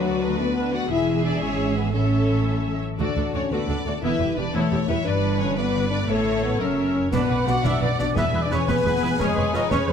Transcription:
Already playing: D2 D3 F#3 D4 F#4 B4
0.05 B3 F#4 D5
0.22 D4 B4
0.38 B3 E4 F#4 B4 D5
0.57 D4 B4
0.73 B3 F#4 D5 F#5
0.90 E1 E2 E3 E4 G#4 E5
1.07 B3
1.25 D4 D5
1.42 G#1 G#2 C#4 F#4 C#5
1.60 E4
1.76 B3 B4
1.94 A1 A2 C#4 A4 C#5 E5
2.13 A3
2.31 E3
2.48 F#3
2.66 E3
2.83 A3
2.99 D2 D3 A3 D4 F#4 D5
3.17 D2 A3 D4 A4
3.34 D2 C#4 D4 F#4 C#5 D5
3.51 D2 A3 B3 E4 F#4 B4 D5
3.68 D2 D4 A4
3.85 D2 A3 F#4 A4 D5
4.02 E1 E2 E3 B3 E4 B4 E5
4.20 E1 E2 G3 E4 G4
4.36 E1 E2 D4 E4 G4 B4 D5
4.54 E1 E2 A3 B3 E4 F#4 A4 C#5
4.72 E1 E2 E4 G4
4.89 E1 E2 G3 E4 G4 B4 E5
5.05 G1 G2 D4 B4 D5
5.24 B3
5.39 D3 C#4 C#5
5.56 E3 B3 B4 D5
5.75 D3
5.90 B3 D4 D5
6.08 A1 A2 A3 A4 C#5
6.26 C#4
6.43 B3 E4 A4 B4
6.60 F#1 F#2 C#4 A#4 C#5 E5
6.78 C#4
6.95 E4 A#4
7.12 B1 B2 B3 D4 B4 D5 F#5, concert bass drum, snare, crash
7.29 B1 B2 D4 B4 D5
7.46 B1 B2 F#4 B4 D5 F#5, snare
7.64 B1 B2 D4 E4 B4 D5 E5, concert bass drum, snare
7.81 B1 B2 D4 B4 D5
7.98 B1 B2 D4 F#4 B4 D5, snare
8.15 E1 E2 B3 E4 G#4 B4 E5 G#5, concert bass drum, snare
8.32 E1 E2 B3 G#4 B4
8.42 D4 D5
8.50 E1 E2 C#4 E4 G#4 B4 C#5, snare
8.67 E1 E2 B3 G#4 B4, concert bass drum, snare
8.84 E1 E2 G#4 B4
9.01 E1 E2 B3 E4 G#4 B4
9.19 F1 F2 G#3 C#4 G#4 B4 C#5, concert bass drum, snare
9.35 F1 F2 C#4 G#4 B4 C#5
9.53 F1 F2 D#4 F4 G#4 B4 C#5 D#5, snare
9.70 F1 F2 C#4 B4 C#5, concert bass drum, snare
9.87 F1 F2 G#4 B4 C#5

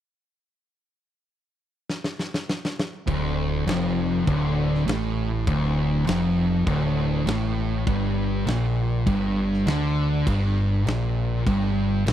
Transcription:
1.90 snare
2.04 snare
2.19 snare
2.34 snare
2.49 snare
2.65 snare
2.79 snare
3.07 D1 D2, kick, crash
3.67 F1 F2, snare, crash
4.27 D1 D2, kick, crash
4.74 snare
4.87 A1 A2, snare, crash
5.47 D1 D2, kick, crash
6.07 F1 F2, snare, crash
6.66 D1 D2, kick, crash
7.26 A1 A2, snare, crash
7.87 G1 G2, kick, crash
8.47 A#1 A#2, snare, crash
9.06 G1 G2, kick, crash
9.53 snare
9.66 D2 D3, snare, crash
10.27 G1 G2, kick, crash
10.86 A#1 A#2, snare, crash
11.47 G1 G2, kick, crash
12.06 A#1 A#2, snare, crash

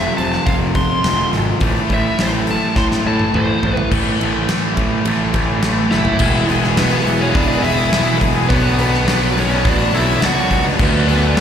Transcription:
Already playing: F2 C3 F3
0.00 E5
0.17 F1 F2 C3 F3 A5, open hi-hat
0.32 snare
0.46 F1 F5, kick, open hi-hat
0.75 C6, kick, open hi-hat
1.04 F1 F2 C3 F3, snare, open hi-hat
1.33 G#1, snare, open hi-hat
1.60 A1 A2 E3 A3, kick, open hi-hat
1.90 A1, kick, open hi-hat
1.94 E5
2.19 A1 C5, snare, open hi-hat
2.46 A2 E3 A3, open hi-hat
2.51 A5
2.76 A2 C6, kick, snare
2.91 snare
3.06 A2 A5
3.19 high tom
3.33 A1 A2 E3 A3 C5, mid tom
3.63 A1, floor tom
3.73 B4
3.77 floor tom
3.90 A1 A2 E3 A3, kick, crash
4.19 A1 A2 E3 A3, ride
4.48 A1 A2 E3 A3, snare, ride
4.75 A1 A2 E3 A3, kick, ride
5.05 A1 A2 E3 A3, ride
5.34 A1 A2 E3 A3, kick, ride
5.63 A1 A2 E3 A3, snare, ride
5.91 F#1 A2 E3 A3 E4 E5, snare
6.05 floor tom
6.19 E1 E3 G#3 B3 E4 G#4 B4 G#5, kick, crash
6.48 E1 E3 G#3 B3 E4 G#4, open hi-hat
6.62 G#3 B3 E4, snare
6.76 E1 E3 G#3 B3 E4 G#4 B4, snare, open hi-hat
7.06 E1, muted distorted electric guitar stroke, open hi-hat
7.20 C#4 E4 G#4 C#5, muted distorted electric guitar stroke
7.24 B3
7.35 E1 D4 D5, kick, open hi-hat
7.48 G#3 B3 D4 E4 G#4 D5
7.62 E1 E3 G#3 B3 E4 E5, open hi-hat
7.67 G#4
7.79 muted distorted electric guitar stroke
7.92 E1 E3 G#3 B3 E4 G#4, snare, open hi-hat
8.08 B3 E4 G#4
8.20 E3 G#3 B3 E4 G#4, kick, open hi-hat
8.34 G#3 B3 E4 G#4
8.49 B1 B2 F#3 B3 D4 F#4 B4 D5 B5, kick, open hi-hat
8.79 B2 F#3 B3 D4 B4, open hi-hat
8.93 F#3 B3 D4, snare
9.06 B1 B2 F#3 B3 D4, snare, open hi-hat
9.36 B1 C#4 C#5, muted distorted electric guitar stroke, open hi-hat
9.50 F#3 B3 D4, muted distorted electric guitar stroke
9.65 A1 D4 D5, kick, open hi-hat
9.79 F#3 B3 D4
9.93 B1 B2 F#3 B3 D4 E4 E5, open hi-hat
10.09 muted distorted electric guitar stroke
10.21 C#2 B2 F#3 B3 D4 F#4, snare, open hi-hat
10.26 F#5
10.36 F#3 B3 D4
10.51 B2 F#3 B3 D4, kick, open hi-hat
10.65 F#3 B3 D4
10.79 D2 D3 F#3 A3 B3 D4 A4 A5, kick, crash
10.84 B4
11.07 D2 D3 F#3 A3 B3 D4 B4, open hi-hat
11.22 F#3 A3 D4
11.36 D2 D3 F#3 A3, snare, open hi-hat

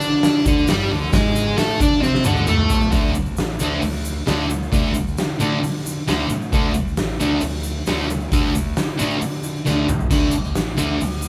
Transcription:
Already playing: D3 D4 D5
0.01 shaker
0.23 snare, open hi-hat, shaker
0.45 D2 D3 D4, kick, shaker
0.58 shaker
0.67 G2 G3 G4, snare, open hi-hat, shaker
0.91 D2 D3
1.13 G#2 G#3 G#4, kick, snare, open hi-hat, shaker
1.36 shaker
1.58 A2 A3 A4, snare, open hi-hat, shaker
1.80 D3 D4 D5, kick, shaker
2.02 C3 C4 C5, snare, shaker
2.15 snare
2.24 D2 D3 D4, high tom, shaker
2.36 high tom, shaker
2.46 A2 A3 A4, mid tom, shaker
2.58 mid tom
2.70 floor tom, shaker
2.81 floor tom, shaker
2.91 D2 D3 A3 D4, kick, open hi-hat, shaker
3.15 D2, shaker
3.26 shaker
3.37 A1, snare, open hi-hat, shaker
3.59 D2 D3 A3 D4, shaker
3.82 D2, open hi-hat, shaker
4.05 shaker
4.26 D2 D3 A3 D4, snare, open hi-hat, shaker
4.50 shaker
4.63 shaker
4.72 D2 D3 A3 D4, kick, open hi-hat, shaker
4.94 D2, shaker
5.07 shaker
5.18 D3, snare, open hi-hat, shaker
5.40 A2 D3 A3 D4, shaker
5.63 D3, open hi-hat, shaker
5.86 shaker
6.07 D2 D3 A3 D4, snare, open hi-hat, shaker
6.30 A2, shaker
6.42 shaker
6.53 D2 D3 A3 D4, kick, open hi-hat, shaker
6.74 D2, shaker
6.88 shaker
6.97 A1, snare, open hi-hat, shaker
7.20 D2 D3 A3 D4, shaker
7.41 D2, open hi-hat, shaker
7.63 shaker
7.86 D2 D3 A3 D4, snare, open hi-hat, shaker
8.10 shaker
8.20 shaker
8.32 D2 D3 A3 D4, kick, open hi-hat, shaker
8.55 D2, shaker
8.77 D3, snare, open hi-hat, shaker
8.98 A2 D3 A3 D4, shaker
9.22 D3, open hi-hat, shaker
9.43 shaker
9.56 shaker
9.66 D2 D3 A3 D4, snare, shaker
9.89 A2, mid tom, shaker
9.99 floor tom, shaker
10.11 D2 D3 A3 D4, kick, open hi-hat, crash, shaker
10.31 D2, shaker
10.44 shaker
10.55 A1, snare, open hi-hat, shaker
10.77 D2 D3 A3 D4, shaker
11.00 D2, open hi-hat, shaker
11.22 shaker

